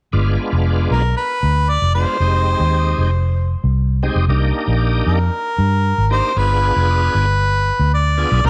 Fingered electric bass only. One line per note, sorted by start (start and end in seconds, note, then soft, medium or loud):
0.13 0.35 G1 medium
0.53 0.86 F1 medium
0.91 1.13 B1 medium
1.43 1.76 D2 medium
1.82 2.04 F1 medium
2.20 2.54 F1 medium
2.60 2.93 D#2 medium
2.98 3.54 F1 medium
3.64 4.08 C2 medium
4.15 4.26 F1 medium
4.28 4.51 C2 medium
4.68 5.01 A#1 medium
5.07 5.29 F2 medium
5.58 5.92 G2 medium
5.98 6.20 G#1 medium
6.36 6.70 G1 medium
6.76 7.09 F1 medium
7.15 7.70 G1 medium
7.79 8.24 D2 medium
8.32 8.42 B1 medium
8.44 8.50 C2 medium